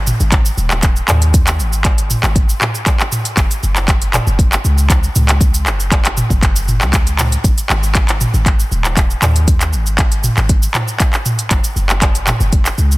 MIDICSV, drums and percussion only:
0, 0, Header, 1, 2, 480
1, 0, Start_track
1, 0, Tempo, 508475
1, 1266, Time_signature, 4, 2, 24, 8
1, 12250, End_track
2, 0, Start_track
2, 0, Title_t, "Drums"
2, 65, Note_on_c, 9, 45, 88
2, 66, Note_on_c, 9, 69, 87
2, 160, Note_off_c, 9, 45, 0
2, 160, Note_off_c, 9, 69, 0
2, 191, Note_on_c, 9, 69, 54
2, 285, Note_off_c, 9, 69, 0
2, 303, Note_on_c, 9, 36, 126
2, 303, Note_on_c, 9, 39, 93
2, 303, Note_on_c, 9, 42, 68
2, 304, Note_on_c, 9, 69, 52
2, 398, Note_off_c, 9, 36, 0
2, 398, Note_off_c, 9, 39, 0
2, 398, Note_off_c, 9, 42, 0
2, 398, Note_off_c, 9, 69, 0
2, 430, Note_on_c, 9, 69, 94
2, 524, Note_off_c, 9, 69, 0
2, 545, Note_on_c, 9, 69, 55
2, 639, Note_off_c, 9, 69, 0
2, 668, Note_on_c, 9, 39, 82
2, 668, Note_on_c, 9, 69, 54
2, 762, Note_off_c, 9, 39, 0
2, 763, Note_off_c, 9, 69, 0
2, 781, Note_on_c, 9, 39, 95
2, 781, Note_on_c, 9, 42, 71
2, 782, Note_on_c, 9, 69, 93
2, 784, Note_on_c, 9, 36, 119
2, 876, Note_off_c, 9, 39, 0
2, 876, Note_off_c, 9, 42, 0
2, 876, Note_off_c, 9, 69, 0
2, 879, Note_off_c, 9, 36, 0
2, 908, Note_on_c, 9, 69, 53
2, 1002, Note_off_c, 9, 69, 0
2, 1023, Note_on_c, 9, 39, 106
2, 1023, Note_on_c, 9, 45, 83
2, 1024, Note_on_c, 9, 69, 99
2, 1118, Note_off_c, 9, 39, 0
2, 1118, Note_off_c, 9, 45, 0
2, 1118, Note_off_c, 9, 69, 0
2, 1150, Note_on_c, 9, 42, 45
2, 1150, Note_on_c, 9, 69, 49
2, 1244, Note_off_c, 9, 42, 0
2, 1244, Note_off_c, 9, 69, 0
2, 1264, Note_on_c, 9, 36, 127
2, 1265, Note_on_c, 9, 42, 71
2, 1265, Note_on_c, 9, 69, 98
2, 1359, Note_off_c, 9, 36, 0
2, 1359, Note_off_c, 9, 42, 0
2, 1360, Note_off_c, 9, 69, 0
2, 1390, Note_on_c, 9, 39, 85
2, 1390, Note_on_c, 9, 42, 32
2, 1390, Note_on_c, 9, 69, 96
2, 1484, Note_off_c, 9, 39, 0
2, 1484, Note_off_c, 9, 42, 0
2, 1485, Note_off_c, 9, 69, 0
2, 1507, Note_on_c, 9, 69, 58
2, 1601, Note_off_c, 9, 69, 0
2, 1630, Note_on_c, 9, 69, 53
2, 1724, Note_off_c, 9, 69, 0
2, 1744, Note_on_c, 9, 36, 127
2, 1744, Note_on_c, 9, 39, 101
2, 1744, Note_on_c, 9, 42, 71
2, 1744, Note_on_c, 9, 69, 55
2, 1838, Note_off_c, 9, 36, 0
2, 1838, Note_off_c, 9, 39, 0
2, 1838, Note_off_c, 9, 42, 0
2, 1839, Note_off_c, 9, 69, 0
2, 1871, Note_on_c, 9, 42, 48
2, 1871, Note_on_c, 9, 69, 57
2, 1965, Note_off_c, 9, 42, 0
2, 1965, Note_off_c, 9, 69, 0
2, 1986, Note_on_c, 9, 45, 84
2, 1986, Note_on_c, 9, 69, 97
2, 2080, Note_off_c, 9, 45, 0
2, 2080, Note_off_c, 9, 69, 0
2, 2111, Note_on_c, 9, 39, 84
2, 2111, Note_on_c, 9, 69, 56
2, 2205, Note_off_c, 9, 39, 0
2, 2206, Note_off_c, 9, 69, 0
2, 2224, Note_on_c, 9, 36, 127
2, 2226, Note_on_c, 9, 42, 66
2, 2226, Note_on_c, 9, 69, 52
2, 2319, Note_off_c, 9, 36, 0
2, 2320, Note_off_c, 9, 42, 0
2, 2321, Note_off_c, 9, 69, 0
2, 2352, Note_on_c, 9, 69, 100
2, 2447, Note_off_c, 9, 69, 0
2, 2468, Note_on_c, 9, 39, 96
2, 2468, Note_on_c, 9, 45, 78
2, 2468, Note_on_c, 9, 69, 54
2, 2562, Note_off_c, 9, 39, 0
2, 2562, Note_off_c, 9, 45, 0
2, 2563, Note_off_c, 9, 69, 0
2, 2594, Note_on_c, 9, 69, 57
2, 2688, Note_off_c, 9, 69, 0
2, 2703, Note_on_c, 9, 36, 127
2, 2706, Note_on_c, 9, 39, 101
2, 2706, Note_on_c, 9, 42, 66
2, 2706, Note_on_c, 9, 69, 97
2, 2798, Note_off_c, 9, 36, 0
2, 2800, Note_off_c, 9, 39, 0
2, 2800, Note_off_c, 9, 42, 0
2, 2801, Note_off_c, 9, 69, 0
2, 2832, Note_on_c, 9, 39, 84
2, 2833, Note_on_c, 9, 69, 58
2, 2927, Note_off_c, 9, 39, 0
2, 2927, Note_off_c, 9, 69, 0
2, 2946, Note_on_c, 9, 45, 78
2, 2946, Note_on_c, 9, 69, 103
2, 3040, Note_off_c, 9, 45, 0
2, 3041, Note_off_c, 9, 69, 0
2, 3070, Note_on_c, 9, 42, 43
2, 3071, Note_on_c, 9, 69, 54
2, 3165, Note_off_c, 9, 42, 0
2, 3165, Note_off_c, 9, 69, 0
2, 3183, Note_on_c, 9, 36, 127
2, 3185, Note_on_c, 9, 39, 95
2, 3185, Note_on_c, 9, 42, 67
2, 3186, Note_on_c, 9, 69, 99
2, 3277, Note_off_c, 9, 36, 0
2, 3280, Note_off_c, 9, 39, 0
2, 3280, Note_off_c, 9, 42, 0
2, 3280, Note_off_c, 9, 69, 0
2, 3313, Note_on_c, 9, 42, 30
2, 3313, Note_on_c, 9, 69, 98
2, 3407, Note_off_c, 9, 42, 0
2, 3408, Note_off_c, 9, 69, 0
2, 3428, Note_on_c, 9, 69, 58
2, 3522, Note_off_c, 9, 69, 0
2, 3551, Note_on_c, 9, 39, 83
2, 3552, Note_on_c, 9, 69, 58
2, 3646, Note_off_c, 9, 39, 0
2, 3646, Note_off_c, 9, 69, 0
2, 3663, Note_on_c, 9, 36, 123
2, 3667, Note_on_c, 9, 39, 93
2, 3667, Note_on_c, 9, 42, 68
2, 3667, Note_on_c, 9, 69, 58
2, 3757, Note_off_c, 9, 36, 0
2, 3761, Note_off_c, 9, 39, 0
2, 3761, Note_off_c, 9, 42, 0
2, 3762, Note_off_c, 9, 69, 0
2, 3791, Note_on_c, 9, 42, 45
2, 3792, Note_on_c, 9, 69, 57
2, 3886, Note_off_c, 9, 42, 0
2, 3886, Note_off_c, 9, 69, 0
2, 3906, Note_on_c, 9, 39, 97
2, 3906, Note_on_c, 9, 45, 92
2, 3907, Note_on_c, 9, 69, 94
2, 4001, Note_off_c, 9, 39, 0
2, 4001, Note_off_c, 9, 45, 0
2, 4001, Note_off_c, 9, 69, 0
2, 4032, Note_on_c, 9, 69, 57
2, 4127, Note_off_c, 9, 69, 0
2, 4142, Note_on_c, 9, 36, 127
2, 4147, Note_on_c, 9, 42, 63
2, 4148, Note_on_c, 9, 69, 55
2, 4237, Note_off_c, 9, 36, 0
2, 4242, Note_off_c, 9, 42, 0
2, 4242, Note_off_c, 9, 69, 0
2, 4272, Note_on_c, 9, 39, 84
2, 4273, Note_on_c, 9, 69, 99
2, 4367, Note_off_c, 9, 39, 0
2, 4367, Note_off_c, 9, 69, 0
2, 4386, Note_on_c, 9, 69, 56
2, 4481, Note_off_c, 9, 69, 0
2, 4512, Note_on_c, 9, 69, 56
2, 4606, Note_off_c, 9, 69, 0
2, 4623, Note_on_c, 9, 36, 123
2, 4627, Note_on_c, 9, 39, 93
2, 4627, Note_on_c, 9, 42, 63
2, 4628, Note_on_c, 9, 69, 93
2, 4717, Note_off_c, 9, 36, 0
2, 4722, Note_off_c, 9, 39, 0
2, 4722, Note_off_c, 9, 42, 0
2, 4722, Note_off_c, 9, 69, 0
2, 4752, Note_on_c, 9, 69, 61
2, 4846, Note_off_c, 9, 69, 0
2, 4866, Note_on_c, 9, 45, 81
2, 4866, Note_on_c, 9, 69, 108
2, 4960, Note_off_c, 9, 45, 0
2, 4960, Note_off_c, 9, 69, 0
2, 4992, Note_on_c, 9, 39, 81
2, 4992, Note_on_c, 9, 42, 43
2, 4992, Note_on_c, 9, 69, 50
2, 5086, Note_off_c, 9, 39, 0
2, 5086, Note_off_c, 9, 42, 0
2, 5087, Note_off_c, 9, 69, 0
2, 5104, Note_on_c, 9, 36, 126
2, 5107, Note_on_c, 9, 42, 67
2, 5108, Note_on_c, 9, 69, 97
2, 5198, Note_off_c, 9, 36, 0
2, 5202, Note_off_c, 9, 42, 0
2, 5202, Note_off_c, 9, 69, 0
2, 5232, Note_on_c, 9, 42, 32
2, 5232, Note_on_c, 9, 69, 97
2, 5326, Note_off_c, 9, 42, 0
2, 5327, Note_off_c, 9, 69, 0
2, 5347, Note_on_c, 9, 39, 92
2, 5347, Note_on_c, 9, 69, 57
2, 5441, Note_off_c, 9, 39, 0
2, 5442, Note_off_c, 9, 69, 0
2, 5474, Note_on_c, 9, 69, 57
2, 5569, Note_off_c, 9, 69, 0
2, 5584, Note_on_c, 9, 36, 123
2, 5589, Note_on_c, 9, 39, 99
2, 5589, Note_on_c, 9, 42, 62
2, 5590, Note_on_c, 9, 69, 55
2, 5678, Note_off_c, 9, 36, 0
2, 5684, Note_off_c, 9, 39, 0
2, 5684, Note_off_c, 9, 42, 0
2, 5684, Note_off_c, 9, 69, 0
2, 5713, Note_on_c, 9, 39, 84
2, 5713, Note_on_c, 9, 42, 46
2, 5713, Note_on_c, 9, 69, 58
2, 5807, Note_off_c, 9, 39, 0
2, 5807, Note_off_c, 9, 42, 0
2, 5808, Note_off_c, 9, 69, 0
2, 5826, Note_on_c, 9, 45, 90
2, 5827, Note_on_c, 9, 69, 93
2, 5920, Note_off_c, 9, 45, 0
2, 5921, Note_off_c, 9, 69, 0
2, 5950, Note_on_c, 9, 36, 64
2, 5954, Note_on_c, 9, 69, 57
2, 6044, Note_off_c, 9, 36, 0
2, 6048, Note_off_c, 9, 69, 0
2, 6065, Note_on_c, 9, 36, 126
2, 6069, Note_on_c, 9, 39, 89
2, 6069, Note_on_c, 9, 42, 62
2, 6070, Note_on_c, 9, 69, 52
2, 6159, Note_off_c, 9, 36, 0
2, 6164, Note_off_c, 9, 39, 0
2, 6164, Note_off_c, 9, 42, 0
2, 6164, Note_off_c, 9, 69, 0
2, 6193, Note_on_c, 9, 42, 31
2, 6193, Note_on_c, 9, 69, 98
2, 6287, Note_off_c, 9, 42, 0
2, 6288, Note_off_c, 9, 69, 0
2, 6308, Note_on_c, 9, 45, 83
2, 6308, Note_on_c, 9, 69, 57
2, 6402, Note_off_c, 9, 45, 0
2, 6403, Note_off_c, 9, 69, 0
2, 6433, Note_on_c, 9, 39, 81
2, 6433, Note_on_c, 9, 69, 56
2, 6527, Note_off_c, 9, 39, 0
2, 6527, Note_off_c, 9, 69, 0
2, 6546, Note_on_c, 9, 36, 122
2, 6547, Note_on_c, 9, 39, 99
2, 6547, Note_on_c, 9, 42, 62
2, 6548, Note_on_c, 9, 69, 98
2, 6640, Note_off_c, 9, 36, 0
2, 6642, Note_off_c, 9, 39, 0
2, 6642, Note_off_c, 9, 42, 0
2, 6642, Note_off_c, 9, 69, 0
2, 6673, Note_on_c, 9, 42, 32
2, 6673, Note_on_c, 9, 69, 56
2, 6767, Note_off_c, 9, 42, 0
2, 6768, Note_off_c, 9, 69, 0
2, 6787, Note_on_c, 9, 39, 93
2, 6787, Note_on_c, 9, 45, 89
2, 6788, Note_on_c, 9, 69, 104
2, 6882, Note_off_c, 9, 39, 0
2, 6882, Note_off_c, 9, 45, 0
2, 6882, Note_off_c, 9, 69, 0
2, 6913, Note_on_c, 9, 42, 41
2, 6913, Note_on_c, 9, 69, 53
2, 7007, Note_off_c, 9, 42, 0
2, 7008, Note_off_c, 9, 69, 0
2, 7026, Note_on_c, 9, 36, 127
2, 7029, Note_on_c, 9, 42, 66
2, 7029, Note_on_c, 9, 69, 97
2, 7120, Note_off_c, 9, 36, 0
2, 7123, Note_off_c, 9, 42, 0
2, 7124, Note_off_c, 9, 69, 0
2, 7153, Note_on_c, 9, 42, 30
2, 7153, Note_on_c, 9, 69, 95
2, 7247, Note_off_c, 9, 42, 0
2, 7248, Note_off_c, 9, 69, 0
2, 7267, Note_on_c, 9, 39, 91
2, 7267, Note_on_c, 9, 69, 55
2, 7361, Note_off_c, 9, 39, 0
2, 7362, Note_off_c, 9, 69, 0
2, 7394, Note_on_c, 9, 69, 54
2, 7488, Note_off_c, 9, 69, 0
2, 7506, Note_on_c, 9, 36, 120
2, 7507, Note_on_c, 9, 39, 107
2, 7507, Note_on_c, 9, 42, 65
2, 7507, Note_on_c, 9, 69, 55
2, 7600, Note_off_c, 9, 36, 0
2, 7601, Note_off_c, 9, 39, 0
2, 7601, Note_off_c, 9, 42, 0
2, 7601, Note_off_c, 9, 69, 0
2, 7634, Note_on_c, 9, 39, 78
2, 7634, Note_on_c, 9, 42, 47
2, 7634, Note_on_c, 9, 69, 57
2, 7728, Note_off_c, 9, 39, 0
2, 7728, Note_off_c, 9, 42, 0
2, 7729, Note_off_c, 9, 69, 0
2, 7748, Note_on_c, 9, 45, 98
2, 7748, Note_on_c, 9, 69, 94
2, 7842, Note_off_c, 9, 45, 0
2, 7843, Note_off_c, 9, 69, 0
2, 7874, Note_on_c, 9, 69, 52
2, 7968, Note_off_c, 9, 69, 0
2, 7986, Note_on_c, 9, 36, 119
2, 7990, Note_on_c, 9, 39, 89
2, 7990, Note_on_c, 9, 42, 63
2, 7990, Note_on_c, 9, 69, 51
2, 8080, Note_off_c, 9, 36, 0
2, 8084, Note_off_c, 9, 39, 0
2, 8084, Note_off_c, 9, 42, 0
2, 8085, Note_off_c, 9, 69, 0
2, 8113, Note_on_c, 9, 69, 95
2, 8208, Note_off_c, 9, 69, 0
2, 8229, Note_on_c, 9, 69, 55
2, 8324, Note_off_c, 9, 69, 0
2, 8353, Note_on_c, 9, 39, 77
2, 8354, Note_on_c, 9, 69, 56
2, 8448, Note_off_c, 9, 39, 0
2, 8448, Note_off_c, 9, 69, 0
2, 8466, Note_on_c, 9, 36, 124
2, 8469, Note_on_c, 9, 39, 102
2, 8469, Note_on_c, 9, 42, 65
2, 8469, Note_on_c, 9, 69, 91
2, 8560, Note_off_c, 9, 36, 0
2, 8563, Note_off_c, 9, 39, 0
2, 8563, Note_off_c, 9, 42, 0
2, 8564, Note_off_c, 9, 69, 0
2, 8594, Note_on_c, 9, 69, 54
2, 8688, Note_off_c, 9, 69, 0
2, 8708, Note_on_c, 9, 39, 96
2, 8708, Note_on_c, 9, 45, 87
2, 8708, Note_on_c, 9, 69, 103
2, 8802, Note_off_c, 9, 39, 0
2, 8802, Note_off_c, 9, 45, 0
2, 8803, Note_off_c, 9, 69, 0
2, 8833, Note_on_c, 9, 42, 41
2, 8834, Note_on_c, 9, 69, 50
2, 8928, Note_off_c, 9, 42, 0
2, 8928, Note_off_c, 9, 69, 0
2, 8946, Note_on_c, 9, 36, 127
2, 8947, Note_on_c, 9, 42, 71
2, 8947, Note_on_c, 9, 69, 90
2, 9040, Note_off_c, 9, 36, 0
2, 9041, Note_off_c, 9, 42, 0
2, 9042, Note_off_c, 9, 69, 0
2, 9071, Note_on_c, 9, 39, 77
2, 9071, Note_on_c, 9, 42, 31
2, 9071, Note_on_c, 9, 69, 93
2, 9165, Note_off_c, 9, 39, 0
2, 9165, Note_off_c, 9, 42, 0
2, 9166, Note_off_c, 9, 69, 0
2, 9184, Note_on_c, 9, 69, 53
2, 9279, Note_off_c, 9, 69, 0
2, 9311, Note_on_c, 9, 69, 50
2, 9406, Note_off_c, 9, 69, 0
2, 9426, Note_on_c, 9, 36, 116
2, 9427, Note_on_c, 9, 39, 111
2, 9427, Note_on_c, 9, 42, 67
2, 9427, Note_on_c, 9, 69, 52
2, 9521, Note_off_c, 9, 36, 0
2, 9521, Note_off_c, 9, 39, 0
2, 9521, Note_off_c, 9, 42, 0
2, 9521, Note_off_c, 9, 69, 0
2, 9550, Note_on_c, 9, 42, 47
2, 9551, Note_on_c, 9, 69, 53
2, 9645, Note_off_c, 9, 42, 0
2, 9645, Note_off_c, 9, 69, 0
2, 9663, Note_on_c, 9, 45, 98
2, 9664, Note_on_c, 9, 69, 92
2, 9758, Note_off_c, 9, 45, 0
2, 9758, Note_off_c, 9, 69, 0
2, 9791, Note_on_c, 9, 39, 80
2, 9792, Note_on_c, 9, 69, 50
2, 9886, Note_off_c, 9, 39, 0
2, 9886, Note_off_c, 9, 69, 0
2, 9905, Note_on_c, 9, 42, 67
2, 9906, Note_on_c, 9, 36, 121
2, 9906, Note_on_c, 9, 69, 50
2, 10000, Note_off_c, 9, 36, 0
2, 10000, Note_off_c, 9, 42, 0
2, 10000, Note_off_c, 9, 69, 0
2, 10031, Note_on_c, 9, 69, 92
2, 10126, Note_off_c, 9, 69, 0
2, 10144, Note_on_c, 9, 39, 90
2, 10144, Note_on_c, 9, 45, 89
2, 10144, Note_on_c, 9, 69, 51
2, 10238, Note_off_c, 9, 39, 0
2, 10238, Note_off_c, 9, 45, 0
2, 10239, Note_off_c, 9, 69, 0
2, 10269, Note_on_c, 9, 69, 55
2, 10364, Note_off_c, 9, 69, 0
2, 10385, Note_on_c, 9, 39, 100
2, 10385, Note_on_c, 9, 42, 64
2, 10386, Note_on_c, 9, 36, 117
2, 10386, Note_on_c, 9, 69, 88
2, 10479, Note_off_c, 9, 39, 0
2, 10479, Note_off_c, 9, 42, 0
2, 10480, Note_off_c, 9, 36, 0
2, 10480, Note_off_c, 9, 69, 0
2, 10510, Note_on_c, 9, 39, 80
2, 10510, Note_on_c, 9, 69, 54
2, 10604, Note_off_c, 9, 39, 0
2, 10605, Note_off_c, 9, 69, 0
2, 10625, Note_on_c, 9, 45, 88
2, 10626, Note_on_c, 9, 69, 95
2, 10719, Note_off_c, 9, 45, 0
2, 10720, Note_off_c, 9, 69, 0
2, 10750, Note_on_c, 9, 42, 41
2, 10751, Note_on_c, 9, 69, 49
2, 10844, Note_off_c, 9, 42, 0
2, 10845, Note_off_c, 9, 69, 0
2, 10864, Note_on_c, 9, 39, 90
2, 10864, Note_on_c, 9, 42, 69
2, 10864, Note_on_c, 9, 69, 93
2, 10865, Note_on_c, 9, 36, 121
2, 10958, Note_off_c, 9, 39, 0
2, 10958, Note_off_c, 9, 42, 0
2, 10959, Note_off_c, 9, 36, 0
2, 10959, Note_off_c, 9, 69, 0
2, 10989, Note_on_c, 9, 42, 33
2, 10989, Note_on_c, 9, 69, 92
2, 11083, Note_off_c, 9, 42, 0
2, 11084, Note_off_c, 9, 69, 0
2, 11105, Note_on_c, 9, 69, 51
2, 11200, Note_off_c, 9, 69, 0
2, 11230, Note_on_c, 9, 39, 81
2, 11230, Note_on_c, 9, 69, 50
2, 11324, Note_off_c, 9, 39, 0
2, 11325, Note_off_c, 9, 69, 0
2, 11345, Note_on_c, 9, 36, 107
2, 11345, Note_on_c, 9, 39, 110
2, 11345, Note_on_c, 9, 42, 73
2, 11346, Note_on_c, 9, 69, 51
2, 11439, Note_off_c, 9, 36, 0
2, 11440, Note_off_c, 9, 39, 0
2, 11440, Note_off_c, 9, 42, 0
2, 11440, Note_off_c, 9, 69, 0
2, 11470, Note_on_c, 9, 42, 47
2, 11471, Note_on_c, 9, 69, 54
2, 11565, Note_off_c, 9, 42, 0
2, 11565, Note_off_c, 9, 69, 0
2, 11585, Note_on_c, 9, 39, 89
2, 11585, Note_on_c, 9, 45, 94
2, 11586, Note_on_c, 9, 69, 87
2, 11680, Note_off_c, 9, 39, 0
2, 11680, Note_off_c, 9, 45, 0
2, 11680, Note_off_c, 9, 69, 0
2, 11710, Note_on_c, 9, 69, 52
2, 11804, Note_off_c, 9, 69, 0
2, 11824, Note_on_c, 9, 36, 119
2, 11824, Note_on_c, 9, 42, 69
2, 11824, Note_on_c, 9, 69, 52
2, 11918, Note_off_c, 9, 36, 0
2, 11918, Note_off_c, 9, 42, 0
2, 11919, Note_off_c, 9, 69, 0
2, 11948, Note_on_c, 9, 39, 79
2, 11949, Note_on_c, 9, 69, 91
2, 12043, Note_off_c, 9, 39, 0
2, 12043, Note_off_c, 9, 69, 0
2, 12065, Note_on_c, 9, 69, 51
2, 12159, Note_off_c, 9, 69, 0
2, 12192, Note_on_c, 9, 69, 51
2, 12250, Note_off_c, 9, 69, 0
2, 12250, End_track
0, 0, End_of_file